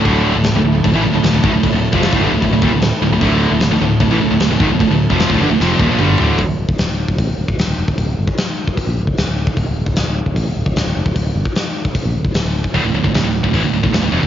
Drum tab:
CC |x---x---x---x---|x---x---x---x---|x---x---x---x---|x---x-----------|
HH |----------------|----------------|----------------|----------------|
SD |----o-------o---|----o-------o---|----o-------o---|----o---o-------|
T2 |----------------|----------------|----------------|------------o---|
FT |----------------|----------------|----------------|--------------o-|
BD |o-------o-----o-|o--o-o--o-o-----|o-------o-----o-|o--o-o----o-----|

CC |----------------|----------------|----------------|----------------|
HH |o---o---o---o---|o---o---o---o---|o---o---o---o---|o---o---o---o---|
SD |----o-------o---|----o-------o---|----o-------o---|----o-------o---|
T2 |----------------|----------------|----------------|----------------|
FT |----------------|----------------|----------------|----------------|
BD |o--o---oo--o---o|o--o---oo--o---o|o--o---oo--o---o|o--o---oo--o---o|

CC |----------------|
HH |o---o---o---o---|
SD |----o-------o---|
T2 |----------------|
FT |----------------|
BD |o--o---oo--o---o|